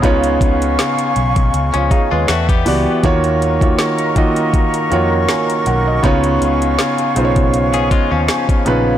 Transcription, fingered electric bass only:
X:1
M:4/4
L:1/16
Q:"Swing 16ths" 1/4=80
K:Dbmix
V:1 name="Fingered electric bass" clef=bass
D,,2 D,,2 z2 C,,2 D,, D,, z E,, =E,,2 D,, z | E,,4 z6 F,,2 z2 C,,2 | D,,2 D,,2 z2 C,,4 z E,, z2 B,,,2 |]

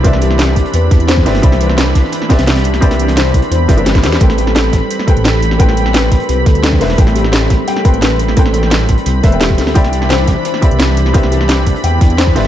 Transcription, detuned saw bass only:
X:1
M:4/4
L:1/16
Q:1/4=173
K:C
V:1 name="Detuned saw bass" clef=bass
C,,6 C,, z E,,2 E,,4 G,,,2 | C,,6 C,, z4 C,,4- C,, | C,,6 C,, z E,,2 G,,,2 G,,,2 E,,2 | A,,,6 A,,, z4 A,,,4- A,,, |
A,,,6 A,,, z C,,2 D,,4 E,,,2 | A,,,6 A,,, z4 A,,,4- A,,, | A,,,6 A,,, z C,,2 E,,,2 E,,,2 D,,2 | C,,6 C,, z4 C,,4- C,, |
C,,6 C,, z E,,2 E,,4 G,,,2 |]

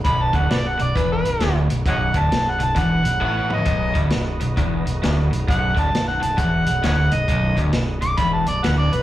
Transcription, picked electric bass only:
X:1
M:4/4
L:1/8
Q:"Swing" 1/4=133
K:Bmix
V:1 name="Picked electric bass" clef=bass
B,,,, =D,,, B,,,, B,,,, E,,, B,,,, D,,, B,,,, | B,,,, =D,,, B,,,, B,,,, E,,, B,,,, A,,,2 | B,,,, =D,,, B,,,, B,,,, E,,, B,,,, D,,, B,,,, | B,,,, =D,,, B,,,, B,,,, E,,, B,,,, D,,, B,,,, |
B,,,, =D,,, B,,,, B,,,, E,,, B,,,, D,,, B,,,, |]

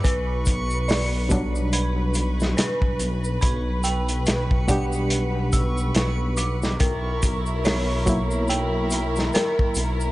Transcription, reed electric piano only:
X:1
M:4/4
L:1/8
Q:"Swing 16ths" 1/4=71
K:Glyd
V:1 name="Reed electric piano" clef=bass
z3 [B,,F,G,D]4- [B,,F,G,D]- | [B,,F,G,D]3 [B,,G,DG]4- [B,,G,DG] | z3 [F,^A,E]4- [F,A,E] |]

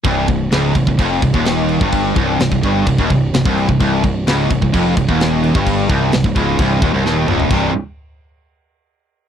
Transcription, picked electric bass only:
X:1
M:4/4
L:1/16
Q:1/4=129
K:Cphr
V:1 name="Picked electric bass" clef=bass
C,,,2 C,,,2 D,,,2 C,,, C,,, F,,,2 C,,, E,,,4 G,,,- | G,,,2 C,,,2 C,,, C,,, G,,,2 C,,, E,,, C,,,2 C,,, C,,,2 C,,, | C,,,2 C,,,2 D,,,2 C,,, C,,, F,,,2 C,,, E,,,4 G,,,- | G,,,2 C,,,2 C,,, C,,, D,,,2 C,,,2 E,,, C,,, E,,,2 D,,,2 |
C,,,2 z12 z2 |]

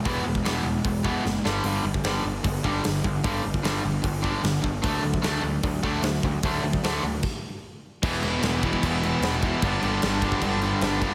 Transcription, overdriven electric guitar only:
X:1
M:4/4
L:1/8
Q:1/4=151
K:Glyd
V:1 name="Overdriven electric guitar" clef=bass
[E,,B,,E,] [E,,B,,] [E,,B,,E,] [E,,B,,] [E,,B,,] [E,,B,,E,] [E,,B,,] [G,,D,G,] | [G,,D,G,] [G,,D,] [G,,D,G,] [G,,D,] [G,,D,] [G,,D,G,] [G,,D,] [G,,D,] | [G,,D,G,] [G,,D,] [G,,D,G,] [G,,D,] [G,,D,] [G,,D,G,] [G,,D,] [G,,D,] | [D,A,D] [D,A,] [D,A,D] [D,A,] [D,A,] [D,A,D] [D,A,] [D,A,] |
[D,A,D] [D,A,] [D,A,D] [D,A,] z4 | [E,,B,,E,] [E,,B,,E,] [E,,B,,E,] [E,,B,,E,] [E,,B,,E,] [E,,B,,E,] [E,,B,,E,] [E,,B,,E,] | [G,,D,G,] [G,,D,G,] [G,,D,G,] [G,,D,G,] [G,,D,G,] [G,,D,G,] [G,,D,G,] [G,,D,G,] |]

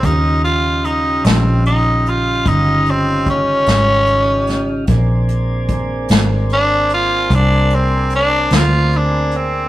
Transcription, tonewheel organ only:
X:1
M:12/8
L:1/8
Q:3/8=50
K:Bbmix
V:1 name="Tonewheel organ"
[_D,G,EF]12 | [B,CDA]12 |]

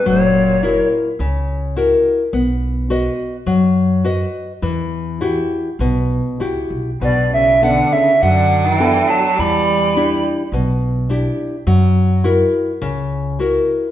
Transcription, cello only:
X:1
M:4/4
L:1/16
Q:1/4=104
K:Bm
V:1 name="Cello" clef=bass
^A,,6 z8 z2 | z16 | z16 | B,,2 C,2 D,2 C,2 D,3 E,3 F,2 |
G,6 z8 z2 | z16 |]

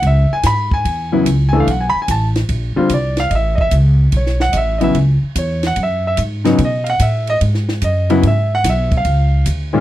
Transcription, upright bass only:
X:1
M:4/4
L:1/8
Q:"Swing" 1/4=146
K:C#phr
V:1 name="Upright bass" clef=bass
C,, z G,,2 E,,2 C,,2 | B,,, z A,,,2 ^A,,, z ^B,,,2 | A,,,2 C,,2 B,,,2 A,,,2 | C,, z E,,2 F,,2 G,,2 |
B,,2 A,,2 G,,2 F,,2 | G,,2 B,,,2 C,,2 D,,2 |]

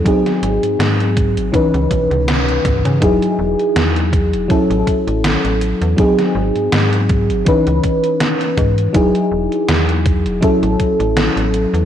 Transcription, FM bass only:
X:1
M:4/4
L:1/16
Q:"Swing 16ths" 1/4=81
K:E
V:1 name="FM bass" clef=bass
z2 G,,, G,, G,,3 G,,, z C,, B,,, C,,3 C,, C, | E,,, z E,,, z E,,3 E,,, z A,,, z A,,,2 A,,,2 E,, | z2 G,,, G,, G,,3 G,,, z C,, z4 G,,2 | E,,, z E,,, z E,,3 E,,, A,,, A,,, z A,,,2 A,,,2 E,, |]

